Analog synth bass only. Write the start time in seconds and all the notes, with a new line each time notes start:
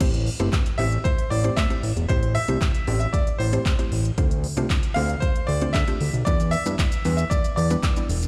0.01 A1
0.40 G1
0.79 A1
1.31 A1
1.57 A2
1.83 A1
1.97 E1
2.09 A1
2.49 C2
2.88 A1
3.40 A1
3.92 A1
4.18 D2
4.57 C2
4.96 D2
5.48 D2
5.74 D3
6.01 D2
6.14 B1
6.27 E2
6.66 G2
7.05 E2
7.57 E2
8.09 E1